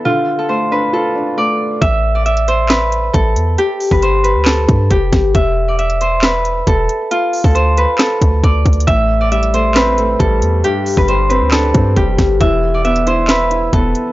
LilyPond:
<<
  \new Staff \with { instrumentName = "Harp" } { \time 4/4 \key a \minor \tempo 4 = 136 f'8. a'16 c''8 b'8 a'4 d''4 | e''8. d''16 e''8 c''8 b'4 a'4 | g'8. b'16 c''8 b'8 a'4 g'4 | e''8. d''16 e''8 c''8 b'4 a'4 |
f'8. a'16 c''8 b'8 a'4 d''4 | e''8. d''16 e''8 c''8 b'4 a'4 | g'8. b'16 c''8 b'8 a'4 g'4 | e''8. d''16 e''8 c''8 b'4 a'4 | }
  \new Staff \with { instrumentName = "Grand piano" } { \time 4/4 \key a \minor d4 a8 d'8 f'8 d'8 a4 | r1 | r1 | r1 |
r1 | a,4 g8 a8 c'8 a8 g4 | g,4 g8 c'8 d'8 c'8 g4 | e4 b8 e'8 e''8 e'8 b4 | }
  \new Staff \with { instrumentName = "808-style bass" } { \clef bass \time 4/4 \key a \minor r1 | a,,2. a,,8 e,8 | r8. g,,4 d,8. g,8 f,,8 g,,8 | e,,2. e,,8 r8 |
r8. d,4 r8. d,8 d,8 d,8 | a,,2. a,,8 e,8 | r8. g,,4 d,8. g,8 f,,8 g,,8 | e,,2. e,,8 r8 | }
  \new DrumStaff \with { instrumentName = "Drums" } \drummode { \time 4/4 r4 r4 r4 r4 | <hh bd>4 hh16 hh16 hh8 <hc hh sn>8 hh8 <hh bd>8 hh8 | hh8 hho16 bd16 hh8 hh8 <hc hh sn>8 <hh bd>8 <hh bd>8 <hh bd sn>8 | <hh bd>4 hh16 hh16 hh8 <hc hh sn>8 hh8 <hh bd>8 hh8 |
hh8 hho16 bd16 hh8 hh8 <hc hh sn>8 <hh bd>8 \tuplet 3/2 { <hh bd>16 r16 r16 <hh bd>16 hh16 hh16 } | <hh bd>4 hh16 hh16 hh8 <hc hh sn>8 hh8 <hh bd>8 hh8 | hh8 hho16 bd16 hh8 hh8 <hc hh sn>8 <hh bd>8 <hh bd>8 <hh bd sn>8 | <hh bd>4 hh16 hh16 hh8 <hc hh sn>8 hh8 <hh bd>8 hh8 | }
>>